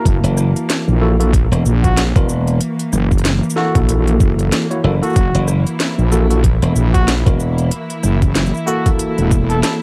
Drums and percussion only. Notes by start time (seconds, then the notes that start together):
0.05 kick, closed hi-hat, shaker
0.24 closed hi-hat, shaker
0.37 cross-stick, shaker
0.56 closed hi-hat, shaker
0.70 snare, closed hi-hat, shaker
0.88 shaker
1.20 closed hi-hat, shaker
1.33 kick, closed hi-hat, shaker
1.52 cross-stick, closed hi-hat, shaker
1.65 shaker
1.84 kick, closed hi-hat, shaker
1.97 snare, closed hi-hat, shaker
2.16 kick, closed hi-hat, shaker
2.29 shaker
2.47 closed hi-hat, shaker
2.61 closed hi-hat, shaker
2.79 closed hi-hat, shaker
2.93 cross-stick, shaker
3.11 kick, shaker
3.18 closed hi-hat
3.25 snare, closed hi-hat, shaker
3.43 shaker
3.50 shaker
3.57 snare
3.75 kick, closed hi-hat, shaker
3.89 closed hi-hat, shaker
4.07 closed hi-hat, shaker
4.20 kick, shaker
4.39 closed hi-hat, shaker
4.52 snare, closed hi-hat, shaker
4.71 closed hi-hat, shaker
5.03 closed hi-hat, shaker
5.06 shaker
5.10 shaker
5.13 closed hi-hat, shaker
5.16 kick, shaker
5.35 closed hi-hat, shaker
5.48 cross-stick, shaker
5.67 closed hi-hat, shaker
5.80 snare, closed hi-hat, shaker
5.99 shaker
6.12 shaker
6.31 closed hi-hat, shaker
6.44 kick, closed hi-hat, shaker
6.62 cross-stick, closed hi-hat, shaker
6.76 shaker
6.94 kick, closed hi-hat, shaker
7.08 snare, closed hi-hat, shaker
7.26 kick, closed hi-hat, shaker
7.40 shaker
7.58 closed hi-hat, shaker
7.71 closed hi-hat, shaker
7.90 closed hi-hat, shaker
8.03 cross-stick, shaker
8.22 kick, closed hi-hat, shaker
8.35 snare, closed hi-hat, shaker
8.46 shaker
8.54 shaker
8.57 shaker
8.67 shaker
8.86 kick, closed hi-hat, shaker
8.99 closed hi-hat, shaker
9.18 closed hi-hat, shaker
9.31 kick, shaker
9.50 closed hi-hat, shaker
9.63 snare, closed hi-hat, shaker